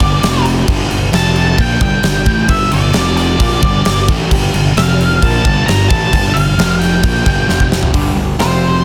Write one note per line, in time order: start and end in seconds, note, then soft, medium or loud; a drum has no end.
0.00 0.21 G1 medium
0.00 0.22 G2 medium
0.00 0.22 D3 medium
0.00 0.22 G3 medium
0.00 0.42 D5 medium
0.00 kick loud
0.00 crash medium
0.23 0.65 F1 loud
0.23 0.67 F2 loud
0.23 0.68 C3 loud
0.23 0.68 F3 medium
0.23 snare loud
0.23 crash medium
0.45 crash medium
0.68 0.89 G1 medium
0.68 0.90 G2 loud
0.68 0.90 D3 loud
0.68 0.90 G3 loud
0.68 kick loud
0.68 crash medium
0.91 1.12 G1 medium
0.91 1.09 G2 medium
0.91 1.09 D3 medium
0.91 crash medium
1.12 1.55 F1 loud
1.12 1.58 F2 medium
1.12 1.57 C3 medium
1.12 1.57 F3 loud
1.12 1.61 A5 medium
1.12 snare loud
1.12 crash medium
1.36 crash medium
1.57 1.80 A#1 loud
1.57 1.80 A#2 medium
1.57 1.80 F3 medium
1.57 1.80 A#3 loud
1.57 1.81 G5 loud
1.57 kick loud
1.57 crash medium
1.80 2.02 G1 loud
1.80 2.02 G2 medium
1.80 2.03 D3 medium
1.80 2.03 G3 medium
1.80 2.46 G5 loud
1.80 kick medium
1.80 crash medium
2.03 2.25 G1 medium
2.03 2.22 G2 medium
2.03 2.22 D3 medium
2.03 snare loud
2.03 crash medium
2.26 2.48 A1 medium
2.26 2.48 A2 medium
2.26 2.48 E3 medium
2.26 2.49 A3 loud
2.26 kick loud
2.26 crash medium
2.48 2.70 G1 medium
2.48 2.70 G2 medium
2.48 2.71 D3 loud
2.48 2.71 G3 loud
2.48 2.73 E5 loud
2.48 kick loud
2.48 crash medium
2.71 2.94 G1 medium
2.71 2.90 G2 medium
2.71 2.90 D3 medium
2.71 3.16 D5 medium
2.71 crash medium
2.93 3.37 F1 loud
2.93 3.39 F2 loud
2.93 3.39 C3 loud
2.93 3.39 F3 loud
2.93 snare loud
2.93 crash medium
3.17 4.04 D5 medium
3.17 snare soft
3.17 crash medium
3.39 3.61 A#1 loud
3.39 3.62 A#2 medium
3.39 3.62 F3 medium
3.39 3.62 A#3 medium
3.39 kick loud
3.39 crash medium
3.62 3.84 G1 loud
3.62 3.84 G2 medium
3.62 3.84 D3 loud
3.62 3.85 G3 loud
3.62 kick loud
3.62 crash medium
3.85 4.07 G1 medium
3.85 4.04 G2 medium
3.85 4.04 D3 medium
3.85 snare loud
3.85 crash medium
4.08 4.30 A1 medium
4.08 4.30 A2 medium
4.08 4.30 E3 medium
4.08 4.31 A3 loud
4.08 kick loud
4.08 crash medium
4.31 4.52 G1 medium
4.31 4.53 G2 loud
4.31 4.53 D3 loud
4.31 4.53 G3 loud
4.31 kick loud
4.31 crash medium
4.54 4.75 G1 medium
4.54 4.72 G2 medium
4.54 4.72 D3 medium
4.54 crash medium
4.77 5.19 F1 medium
4.77 5.21 F2 loud
4.77 5.21 C3 loud
4.77 5.21 F3 loud
4.77 5.24 F5 medium
4.77 snare loud
4.77 crash medium
5.00 crash medium
5.22 5.43 A#1 loud
5.22 5.44 A#2 medium
5.22 5.44 F3 medium
5.22 5.44 A#3 loud
5.22 5.66 A5 loud
5.22 kick loud
5.22 crash medium
5.44 5.66 G1 loud
5.44 5.65 G2 loud
5.44 5.66 D3 loud
5.44 5.67 G3 medium
5.44 kick loud
5.44 crash medium
5.66 5.89 G1 medium
5.66 5.85 G2 medium
5.66 5.85 D3 medium
5.66 5.88 A#5 medium
5.66 snare loud
5.66 crash medium
5.89 6.11 A1 medium
5.89 6.11 A2 medium
5.89 6.12 E3 loud
5.89 6.12 A3 loud
5.89 6.36 A5 loud
5.89 kick loud
5.89 crash medium
6.13 6.34 G1 medium
6.13 6.34 G2 loud
6.13 6.35 D3 loud
6.13 6.35 G3 loud
6.13 kick loud
6.13 crash medium
6.34 6.57 G1 medium
6.34 6.54 G2 medium
6.34 6.54 D3 medium
6.34 6.77 F5 medium
6.34 crash medium
6.58 7.00 F1 loud
6.58 7.03 F2 medium
6.58 7.02 C3 loud
6.58 7.02 F3 loud
6.58 snare loud
6.58 crash medium
6.79 7.67 G5 medium
6.79 snare soft
6.79 crash medium
7.03 7.25 A#1 loud
7.03 7.25 A#2 medium
7.03 7.25 F3 medium
7.03 7.25 A#3 medium
7.03 kick loud
7.03 crash medium
7.26 7.47 G1 medium
7.26 7.48 G2 medium
7.26 7.48 D3 medium
7.26 7.48 G3 loud
7.26 kick loud
7.26 crash medium
7.48 7.92 F1 loud
7.48 7.93 F2 loud
7.48 7.93 C3 loud
7.48 7.94 F3 loud
7.48 snare medium
7.60 kick medium
7.72 snare loud
7.83 floor tom medium
7.94 8.15 G1 medium
7.94 8.16 G2 medium
7.94 8.16 D3 medium
7.94 8.17 G3 loud
7.94 kick loud
7.94 open hi-hat medium
8.15 8.37 G1 medium
8.15 8.35 G2 medium
8.15 8.35 D3 medium
8.39 8.82 F1 medium
8.39 8.84 F2 medium
8.39 8.84 C3 medium
8.39 8.84 F3 medium
8.39 8.62 C4 medium
8.39 8.62 F4 medium
8.39 8.84 C5 medium
8.39 snare loud
8.39 open hi-hat soft
8.63 8.84 F3 medium
8.63 8.84 C4 medium